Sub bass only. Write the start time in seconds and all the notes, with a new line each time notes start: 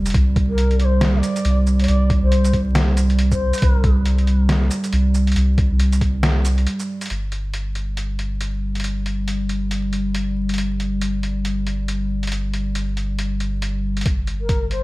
Already playing: F1
0.14 C2
1.45 C2
1.88 C2
2.23 C2
3.62 C2
4.93 C2
5.36 C2
5.71 C2
7.10 G1
14.06 G1